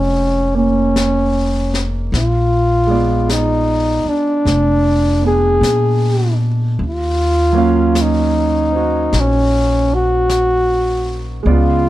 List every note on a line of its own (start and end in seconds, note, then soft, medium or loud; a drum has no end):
0.00 2.08 F1 medium
0.00 2.09 G#3 soft
0.00 0.56 C#4 medium
0.00 2.13 C#4 soft
0.00 2.15 D#4 soft
0.00 2.11 C5 soft
0.55 2.12 A#3 soft
0.55 1.91 C#4 medium
0.96 brush sweep soft
0.96 snare soft
0.96 hi-hat pedal soft
1.74 snare soft
2.12 4.02 A#1 medium
2.12 3.26 F4 medium
2.12 brush sweep soft
2.12 snare soft
2.87 6.77 G#3 soft
2.87 5.20 B3 soft
2.87 6.79 D5 soft
2.92 6.80 F4 soft
3.29 4.10 D#4 medium
3.29 brush sweep soft
3.29 snare soft
3.29 hi-hat pedal medium
4.05 5.24 D4 medium
4.05 muted upright bass stroke soft
4.45 5.58 F1 medium
4.45 brush sweep soft
4.45 snare soft
5.22 6.78 B3 soft
5.22 6.80 D4 soft
5.27 6.37 G#4 medium
5.61 6.74 A#2 medium
5.61 brush sweep soft
5.61 snare soft
5.61 hi-hat pedal soft
6.79 9.08 D#2 medium
6.79 brush sweep soft
6.87 8.03 F4 medium
7.53 11.44 F#3 soft
7.53 11.45 A#3 soft
7.57 11.46 C#4 soft
7.57 11.47 F5 medium
7.95 brush sweep soft
7.95 snare soft
7.95 hi-hat pedal soft
8.02 9.21 D#4 medium
8.72 11.46 D#4 soft
8.72 11.47 F#4 soft
8.72 11.45 C5 soft
9.13 11.42 A#1 medium
9.13 brush sweep soft
9.13 snare soft
9.20 9.96 C#4 medium
9.94 11.30 F#4 medium
10.29 brush sweep soft
10.29 snare soft
10.29 hi-hat pedal soft
11.43 11.89 C#2 medium
11.43 11.89 G#3 soft
11.43 11.89 B3 soft
11.43 11.89 D5 soft
11.43 brush sweep soft
11.48 11.89 F4 medium